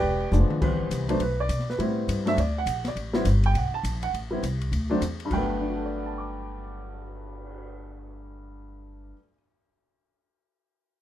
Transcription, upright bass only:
0.02 0.31 E1 medium
0.32 0.49 F1 medium
0.50 muted upright bass stroke soft
0.61 0.90 A1 medium
0.91 1.19 C2 medium
1.20 1.48 B1 medium
1.49 1.78 B2 medium
1.79 2.07 A2 medium
2.08 2.36 G2 medium
2.37 2.66 D2 medium
2.66 2.95 A#1 medium
2.95 3.24 A1 medium
3.25 3.53 G1 medium
3.54 3.70 B1 medium
3.71 muted upright bass stroke soft
3.83 4.12 A#1 medium
4.13 4.42 A1 medium
4.43 4.71 C2 medium
4.72 5.00 D2 medium
5.01 5.30 E2 medium
5.31 9.11 G1 medium

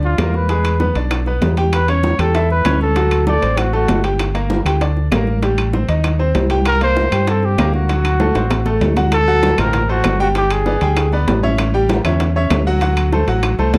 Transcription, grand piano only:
0.00 0.13 D4 medium
0.00 0.13 D5 medium
0.19 0.44 A#3 medium
0.19 0.44 A#4 medium
0.50 0.75 G#3 medium
0.50 0.75 G#4 medium
0.80 0.93 B3 medium
0.80 0.93 B4 medium
0.96 1.21 D4 medium
0.96 1.21 D5 medium
1.27 1.52 B3 medium
1.27 1.52 B4 medium
1.58 1.83 G4 medium
1.58 1.83 G5 medium
1.89 2.14 C#4 medium
1.89 2.14 C#5 medium
2.19 2.32 G4 medium
2.19 2.32 G5 medium
2.35 2.60 E4 medium
2.35 2.60 E5 medium
2.66 2.91 C#4 medium
2.66 2.91 C#5 medium
2.97 3.22 F#3 medium
2.97 3.22 F#4 medium
3.27 3.40 A3 medium
3.27 3.40 A4 medium
3.42 3.67 C4 medium
3.42 3.68 C5 medium
3.73 3.98 A3 medium
3.73 3.99 A4 medium
4.04 4.29 G4 medium
4.04 4.29 G5 medium
4.35 4.60 A#3 medium
4.35 4.60 A#4 medium
4.66 4.78 G4 medium
4.66 4.78 G5 medium
4.81 5.06 D4 medium
4.81 5.07 D5 medium
5.12 5.37 A#3 medium
5.12 5.37 A#4 medium
5.43 5.68 G3 medium
5.43 5.68 G4 medium
5.74 5.86 C4 medium
5.74 5.86 C5 medium
5.89 6.14 D#4 medium
5.89 6.14 D#5 medium
6.19 6.45 C4 medium
6.19 6.45 C5 medium
6.51 6.76 G4 medium
6.51 6.76 G5 medium
6.81 7.07 A#3 medium
6.81 7.07 A#4 medium
7.12 7.25 G4 medium
7.12 7.25 G5 medium
7.28 7.53 C4 medium
7.28 7.53 C5 medium
7.59 7.84 A#3 medium
7.59 7.84 A#4 medium
7.89 8.14 F#3 medium
7.89 8.15 F#4 medium
8.20 8.33 A3 medium
8.20 8.33 A4 medium
8.35 8.61 C4 medium
8.35 8.61 C5 medium
8.66 8.91 A3 medium
8.66 8.92 A4 medium
8.97 9.09 F#4 medium
8.97 9.10 F#5 medium
9.28 9.53 F#3 medium
9.28 9.53 F#4 medium
9.28 9.53 F#5 medium
9.58 9.84 A#3 medium
9.58 9.84 A#4 medium
9.58 9.84 C5 medium
9.89 10.14 A3 medium
9.89 10.15 A4 medium
9.89 10.15 C5 medium
10.20 10.32 G3 medium
10.20 10.33 G4 medium
10.20 10.33 G5 medium
10.35 10.61 G3 medium
10.35 10.61 G4 medium
10.35 10.61 G5 medium
10.67 10.79 B3 medium
10.67 10.79 B4 medium
10.67 10.79 D5 medium
10.82 11.07 G3 medium
10.82 11.07 G#4 medium
10.82 11.07 G5 medium
11.13 11.38 B3 medium
11.13 11.38 B4 medium
11.13 11.38 D5 medium
11.43 11.68 C#4 medium
11.43 11.69 C#5 medium
11.43 11.69 E5 medium
11.74 11.99 G3 medium
11.74 11.99 G4 medium
11.74 11.99 G5 medium
12.05 12.30 C#4 medium
12.05 12.30 C#5 medium
12.05 12.30 E5 medium
12.36 12.61 C#4 medium
12.36 12.61 C#5 medium
12.36 12.61 E5 medium
12.67 12.79 F#3 medium
12.67 12.79 F#4 medium
12.67 12.79 F#5 medium
12.82 13.07 F#3 medium
12.82 13.07 F#4 medium
12.82 13.07 F#5 medium
13.12 13.25 A3 medium
13.12 13.25 A4 medium
13.12 13.26 C5 medium
13.28 13.53 F#3 medium
13.28 13.53 F#4 medium
13.28 13.53 F#5 medium
13.59 13.78 A3 medium
13.59 13.78 A4 medium
13.59 13.78 C5 medium

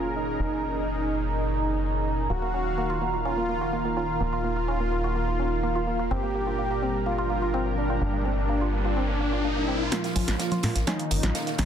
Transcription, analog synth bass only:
0.00 0.37 F#1 medium
0.40 2.28 F#1 medium
2.30 4.18 D#1 medium
4.21 6.09 D#1 medium
6.11 7.99 G1 medium
8.02 9.90 G1 medium
10.16 10.26 A#1 medium
10.28 10.37 A#1 medium
10.63 10.73 A#2 medium
10.76 10.85 A#1 medium
11.11 11.21 G#1 medium
11.23 11.33 A#1 medium
11.59 11.65 A#1 medium

